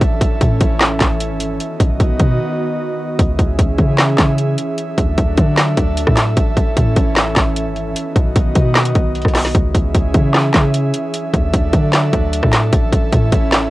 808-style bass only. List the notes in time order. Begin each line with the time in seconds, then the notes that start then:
0.01 A1
0.21 A1
0.41 A2
0.61 A1
1.01 A1
1.30 G#1
1.80 B1
2.00 B1
2.20 B2
3.19 C#2
3.39 C#2
3.59 C#2
3.79 C#3
4.18 C#3
4.98 D2
5.18 D2
5.38 D3
5.77 D2
6.07 A2
6.37 A1
6.57 A1
6.77 A2
6.96 A1
7.36 A1
7.66 G#1
8.16 B1
8.36 B1
8.55 B2
8.95 B1
9.25 B1
9.55 C#2
9.75 C#2
9.95 C#2
10.14 C#3
10.54 C#3
11.34 D2
11.54 D2
11.73 D3
12.13 D2
12.43 A2
12.73 A1
12.93 A1
13.13 A2
13.32 A1